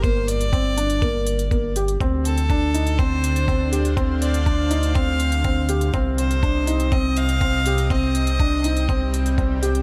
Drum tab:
HH |x-xxx-xxx-xxx-xx|x-xxx-xxx-xxx-xx|x-xxx-xxx-xxx-xx|x-xxx-xxx-xxx-xx|
BD |o---o---o---o---|o---o---o---o---|o---o---o---o---|o---o---o---o---|

HH |x-xxx-xxx-xxx-xx|
BD |o---o---o---o---|